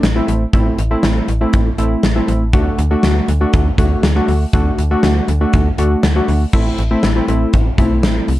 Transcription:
0.03 0.21 A1 loud
0.03 snare loud
0.03 closed hi-hat medium
0.16 0.44 A3 medium
0.16 0.44 C4 medium
0.16 0.44 E4 medium
0.28 0.46 A1 loud
0.28 closed hi-hat medium
0.53 0.71 A1 loud
0.53 0.81 A3 medium
0.53 0.81 C4 medium
0.53 0.81 E4 medium
0.53 kick loud
0.53 closed hi-hat medium
0.78 0.96 A1 loud
0.78 closed hi-hat medium
0.91 1.28 A3 medium
0.91 1.28 C4 medium
0.91 1.28 E4 medium
1.03 1.21 A1 loud
1.03 snare loud
1.03 closed hi-hat medium
1.28 1.46 A1 loud
1.28 closed hi-hat medium
1.41 1.69 A3 medium
1.41 1.69 C4 medium
1.41 1.69 E4 medium
1.53 1.71 A1 loud
1.53 kick medium
1.53 closed hi-hat medium
1.78 1.96 A1 loud
1.78 2.06 A3 medium
1.78 2.06 C4 medium
1.78 2.06 E4 medium
1.78 closed hi-hat medium
2.03 2.21 A1 loud
2.03 snare loud
2.03 closed hi-hat medium
2.16 2.44 A3 medium
2.16 2.44 C4 medium
2.16 2.44 E4 medium
2.28 2.55 A1 loud
2.28 closed hi-hat medium
2.53 2.71 D2 loud
2.53 2.81 A3 medium
2.53 2.81 D4 medium
2.53 2.81 F#4 medium
2.53 kick loud
2.53 closed hi-hat medium
2.78 2.96 D2 loud
2.78 closed hi-hat medium
2.91 3.28 A3 medium
2.91 3.28 D4 medium
2.91 3.28 F#4 loud
3.03 3.21 D2 loud
3.03 snare loud
3.03 closed hi-hat medium
3.28 3.46 D2 loud
3.28 closed hi-hat medium
3.41 3.69 A3 medium
3.41 3.69 D4 medium
3.41 3.69 F#4 loud
3.53 3.71 D2 loud
3.53 kick medium
3.53 closed hi-hat medium
3.78 3.96 D2 loud
3.78 4.06 A3 medium
3.78 4.06 D4 medium
3.78 4.06 F#4 medium
3.78 kick medium
3.78 closed hi-hat medium
4.03 4.21 D2 loud
4.03 snare loud
4.03 closed hi-hat medium
4.16 4.44 A3 medium
4.16 4.44 D4 medium
4.16 4.44 F#4 medium
4.28 4.46 D2 medium
4.28 open hi-hat medium
4.53 4.71 D2 loud
4.53 4.81 A3 medium
4.53 4.81 D4 medium
4.53 4.81 F#4 medium
4.53 kick loud
4.53 closed hi-hat medium
4.78 4.96 D2 medium
4.78 closed hi-hat medium
4.91 5.28 A3 medium
4.91 5.28 D4 medium
4.91 5.28 F#4 loud
5.03 5.21 D2 loud
5.03 snare loud
5.03 closed hi-hat medium
5.28 5.46 D2 loud
5.28 closed hi-hat medium
5.41 5.69 A3 medium
5.41 5.69 D4 medium
5.41 5.69 F#4 medium
5.53 5.71 D2 loud
5.53 kick medium
5.53 closed hi-hat medium
5.78 5.96 D2 loud
5.78 6.06 A3 medium
5.78 6.06 D4 medium
5.78 6.06 F#4 medium
5.78 closed hi-hat medium
6.03 6.21 D2 loud
6.03 snare loud
6.03 closed hi-hat medium
6.16 6.44 A3 medium
6.16 6.44 D4 medium
6.16 6.44 F#4 medium
6.28 6.46 D2 loud
6.28 open hi-hat medium
6.53 6.71 A1 loud
6.53 6.81 A3 medium
6.53 6.81 C4 medium
6.53 6.81 E4 loud
6.53 kick loud
6.53 crash loud
6.78 6.96 A1 loud
6.78 closed hi-hat medium
6.91 7.09 A3 medium
6.91 7.09 C4 medium
6.91 7.09 E4 loud
7.03 7.21 A1 loud
7.03 snare loud
7.03 closed hi-hat medium
7.16 7.25 A3 medium
7.16 7.25 C4 medium
7.16 7.25 E4 medium
7.28 7.46 A1 loud
7.28 7.66 A3 medium
7.28 7.66 C4 medium
7.28 7.66 E4 medium
7.28 closed hi-hat medium
7.53 7.71 A1 loud
7.53 kick loud
7.53 closed hi-hat medium
7.78 8.05 B1 medium
7.78 8.34 A3 medium
7.78 8.34 C4 medium
7.78 8.34 E4 medium
7.78 kick medium
7.78 closed hi-hat medium
8.03 8.21 A1 loud
8.03 snare loud
8.03 closed hi-hat medium
8.28 8.40 C2 medium
8.28 open hi-hat medium

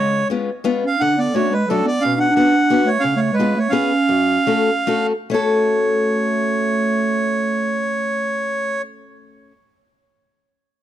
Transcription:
0.00 0.22 C#3 medium
0.00 0.28 G#3 medium
0.00 0.28 C#5 medium
0.30 0.49 G#3 soft
0.30 0.49 B3 soft
0.30 0.49 C#4 medium
0.30 0.49 F4 medium
0.64 0.83 G#3 medium
0.64 0.84 B3 medium
0.64 0.84 C#4 medium
0.64 0.84 F4 medium
0.83 0.97 C#4 medium
0.83 1.02 F5 medium
0.98 1.27 D3 medium
0.98 1.16 D4 medium
0.98 1.19 F#5 loud
1.18 1.33 B3 medium
1.18 1.35 D5 medium
1.34 1.51 A3 medium
1.34 1.53 A3 medium
1.34 1.53 C#4 medium
1.34 1.53 D4 soft
1.34 1.53 F#4 medium
1.34 1.53 C#5 medium
1.52 1.67 G#3 medium
1.52 1.69 B4 medium
1.67 1.83 F#3 medium
1.67 1.88 A3 medium
1.67 1.88 C#4 medium
1.67 1.88 D4 medium
1.67 1.88 F#4 medium
1.67 1.86 A4 medium
1.84 2.00 B3 medium
1.84 2.03 D5 medium
2.01 2.29 B2 medium
2.01 2.16 C#4 medium
2.01 2.19 F5 loud
2.17 2.30 D4 medium
2.17 2.34 F#5 medium
2.30 2.81 D4 medium
2.36 2.54 B3 medium
2.36 2.54 C#4 soft
2.36 2.54 D4 medium
2.36 2.55 F#4 medium
2.36 2.89 F#5 loud
2.70 2.88 B3 medium
2.70 2.88 C#4 medium
2.70 2.88 D4 medium
2.70 2.88 F#4 medium
2.84 2.99 A3 medium
2.84 3.03 C#5 loud
3.00 3.15 C#4 medium
3.00 3.20 F5 loud
3.04 3.29 C#3 medium
3.16 3.32 A3 medium
3.16 3.35 C#5 medium
3.33 3.55 G#3 medium
3.33 3.59 B4 medium
3.39 3.57 B3 medium
3.39 3.57 C#4 medium
3.39 3.57 F4 medium
3.39 3.57 G#4 medium
3.56 3.69 A3 medium
3.56 3.71 C#5 medium
3.69 3.91 B3 medium
3.69 5.07 C#4 medium
3.69 3.91 C#4 medium
3.69 3.91 F4 medium
3.69 3.91 G#4 medium
3.69 5.07 F5 loud
4.09 4.37 F#2 medium
4.47 4.69 A3 medium
4.47 4.69 C#4 medium
4.47 4.69 F#4 medium
4.47 4.69 A4 medium
4.87 5.11 A3 medium
4.87 5.11 C#4 medium
4.87 5.12 F#4 medium
4.87 5.12 A4 medium
5.30 9.50 A3 medium
5.30 8.82 A3 medium
5.30 9.51 C#4 medium
5.30 9.52 F#4 medium
5.30 8.82 C#5 medium
5.34 9.53 A4 medium

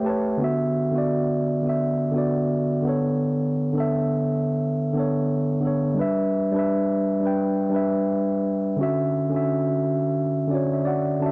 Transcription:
0.00 0.02 A3 medium
0.00 0.30 A3 medium
0.00 0.05 G4 medium
0.00 0.07 B4 medium
0.00 0.09 C#5 medium
0.00 0.43 E5 medium
0.00 0.43 G5 medium
0.05 0.31 G4 medium
0.05 0.32 B4 medium
0.05 0.39 A5 medium
0.09 0.34 C#5 medium
0.37 0.75 D3 loud
0.37 0.76 B3 medium
0.42 0.78 F#4 medium
0.42 0.79 E5 loud
0.91 1.39 D3 medium
0.91 1.41 B3 medium
0.95 1.42 F#4 medium
0.95 1.43 D5 medium
1.62 2.00 D3 medium
1.62 2.01 B3 medium
1.67 2.02 F#4 medium
1.67 2.03 E5 medium
2.11 2.81 D3 medium
2.11 2.83 B3 medium
2.16 2.85 F#4 medium
2.16 2.87 D5 medium
2.82 3.53 D3 medium
2.82 3.55 B3 medium
2.87 3.56 A4 medium
2.87 3.57 C#5 medium
3.73 4.56 D3 medium
3.73 4.57 B3 medium
3.78 4.58 A4 medium
3.78 4.59 E5 loud
4.93 5.44 D3 medium
4.93 5.45 B3 medium
4.97 5.46 A4 medium
4.97 5.47 C#5 medium
5.61 5.88 D3 medium
5.61 5.89 B3 medium
5.65 5.91 A4 medium
5.65 5.92 C#5 medium
5.95 6.33 G3 loud
5.95 6.34 D4 medium
6.00 6.36 B4 medium
6.00 6.37 E5 loud
6.52 6.99 G3 medium
6.52 7.00 D4 medium
6.56 7.01 B4 medium
6.56 7.02 E5 medium
7.20 7.58 G3 medium
7.20 7.59 D4 medium
7.25 7.60 B4 medium
7.25 7.61 G5 medium
7.69 8.44 G3 medium
7.69 8.45 D4 medium
7.74 8.46 B4 medium
7.74 8.47 E5 medium
8.76 9.13 D3 loud
8.76 9.15 C#4 medium
8.81 9.16 F#4 loud
8.81 9.17 E5 loud
9.30 10.13 D3 medium
9.30 10.14 C#4 medium
9.34 10.15 F#4 medium
9.34 10.16 E5 medium
10.48 11.00 D3 medium
10.48 11.01 C#4 medium
10.48 10.71 D5 medium
10.53 10.86 F#4 medium
10.53 11.04 C#5 medium
10.73 10.87 E5 medium
10.85 11.22 F#4 medium
10.85 11.32 D5 medium
10.85 11.20 F#5 medium
11.19 11.32 D3 medium
11.19 11.32 C#4 medium
11.19 11.32 A5 medium
11.23 11.32 F#4 medium
11.23 11.32 E5 medium

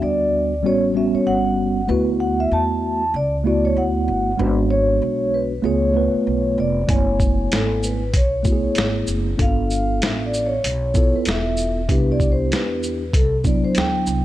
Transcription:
0.00 0.64 D2 medium
0.00 0.52 G3 medium
0.00 0.52 B3 medium
0.00 0.53 D4 medium
0.00 0.53 F#4 medium
0.00 0.66 D5 medium
0.63 1.11 A1 loud
0.63 0.92 G3 medium
0.63 0.92 B3 medium
0.63 0.93 C#4 medium
0.63 0.93 F#4 medium
0.63 0.75 C#5 medium
0.94 1.80 G3 medium
0.94 1.80 B3 medium
0.94 1.81 C#4 medium
0.94 1.81 F#4 medium
0.94 1.15 E5 medium
1.14 1.27 C#5 medium
1.14 muted upright bass stroke soft
1.27 1.86 G1 medium
1.27 1.85 F#5 medium
1.88 2.48 D2 loud
1.88 3.02 A3 medium
1.88 3.02 B3 medium
1.88 3.03 E4 medium
1.88 3.03 F#4 medium
1.88 2.08 B4 medium
2.20 2.39 F#5 medium
2.40 2.53 E5 medium
2.51 3.11 E2 medium
2.51 3.11 A5 medium
3.14 3.73 C#2 medium
3.14 3.35 D5 medium
3.44 4.30 A3 medium
3.44 4.30 B3 medium
3.44 4.31 E4 medium
3.44 4.31 F#4 medium
3.44 3.65 D5 medium
3.65 3.76 C#5 medium
3.77 4.06 D2 medium
3.77 4.41 F#5 medium
4.08 4.37 G1 medium
4.37 4.98 G#1 loud
4.37 5.52 G#3 medium
4.37 5.52 B3 medium
4.37 5.53 D4 medium
4.37 5.53 F#4 medium
4.37 4.49 B4 medium
4.71 5.35 C#5 medium
5.02 5.61 B1 medium
5.34 5.66 B4 medium
5.62 6.11 C#2 medium
5.62 5.91 A3 medium
5.62 5.92 B3 medium
5.62 5.92 F4 medium
5.62 5.93 G#4 medium
5.62 6.54 C#5 medium
5.94 6.80 A3 medium
5.94 6.80 B3 medium
5.94 6.81 F4 medium
5.94 6.81 B4 medium
6.14 muted upright bass stroke soft
6.27 6.56 B1 medium
6.58 6.87 F1 medium
6.58 6.88 D5 medium
6.87 7.48 F#1 loud
6.87 8.01 A3 medium
6.87 8.02 B3 medium
6.87 8.02 E4 medium
6.87 7.54 C#5 medium
6.87 8.03 G#5 medium
6.87 kick medium
6.87 closed hi-hat medium
7.20 kick medium
7.20 shaker soft
7.52 8.11 G#1 medium
7.52 7.85 A4 medium
7.52 snare medium
7.52 closed hi-hat medium
7.83 8.16 B4 medium
7.83 shaker medium
8.14 8.61 B1 medium
8.14 9.05 C#5 medium
8.14 kick medium
8.14 closed hi-hat medium
8.43 9.29 A3 medium
8.43 9.30 B3 medium
8.43 9.30 E4 medium
8.43 8.53 F#4 medium
8.43 kick medium
8.43 shaker medium
8.52 9.34 G#4 medium
8.63 muted upright bass stroke soft
8.75 9.06 G#1 medium
8.75 snare loud
8.75 closed hi-hat medium
9.07 9.37 F#1 medium
9.07 shaker medium
9.37 9.98 G1 loud
9.37 9.46 A#3 medium
9.37 10.52 D4 medium
9.37 10.52 F4 medium
9.37 10.53 A4 medium
9.37 kick loud
9.37 closed hi-hat medium
9.42 10.55 B3 medium
9.42 10.05 F5 medium
9.70 shaker soft
10.02 10.61 A1 medium
10.02 snare loud
10.02 closed hi-hat medium
10.26 10.46 D5 medium
10.34 shaker soft
10.47 10.97 C#5 medium
10.64 11.11 B1 loud
10.64 closed hi-hat medium
10.94 11.80 B3 medium
10.94 11.80 E4 medium
10.94 11.81 F4 medium
10.94 11.81 A4 medium
10.94 11.15 C#5 medium
10.94 kick loud
10.94 shaker medium
11.14 11.28 B4 medium
11.14 muted upright bass stroke soft
11.25 11.86 E1 medium
11.25 snare loud
11.25 closed hi-hat medium
11.30 11.92 E5 medium
11.57 shaker medium
11.88 12.48 C2 loud
11.88 13.02 B3 medium
11.88 13.02 D4 medium
11.88 13.03 E4 medium
11.88 13.03 G4 medium
11.88 12.12 B4 medium
11.88 kick loud
11.88 closed hi-hat medium
12.12 12.30 D5 medium
12.20 kick medium
12.20 shaker soft
12.32 12.41 C5 medium
12.51 13.11 E2 medium
12.51 13.16 B4 medium
12.51 snare loud
12.51 closed hi-hat medium
12.83 shaker soft
13.13 13.61 C2 loud
13.13 13.34 A4 medium
13.13 kick medium
13.13 closed hi-hat medium
13.44 14.25 F#3 medium
13.44 14.25 B3 medium
13.44 14.25 D4 medium
13.44 14.25 E4 medium
13.44 13.55 D5 medium
13.44 kick medium
13.44 shaker medium
13.64 13.76 C5 medium
13.64 muted upright bass stroke soft
13.75 14.06 D2 medium
13.75 14.25 G5 loud
13.75 snare loud
13.75 closed hi-hat medium
14.06 14.25 C2 medium
14.06 shaker medium

